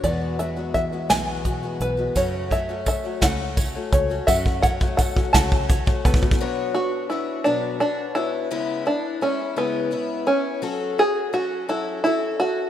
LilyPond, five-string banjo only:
\new Staff \with { instrumentName = "Five-string banjo" } { \time 6/8 \key fis \minor \tempo 4. = 57 d''8 e''8 e''8 gis''8 r8 b'8 | cis''8 e''8 e''8 fis''8 r8 cis''8 | e''8 fis''8 fis''8 a''8 r8 b8~ | b8 fis'8 e'8 d'8 d'8 e'8~ |
e'8 d'8 cis'8 b4 cis'8~ | cis'8 gis'8 fis'8 e'8 e'8 fis'8 | }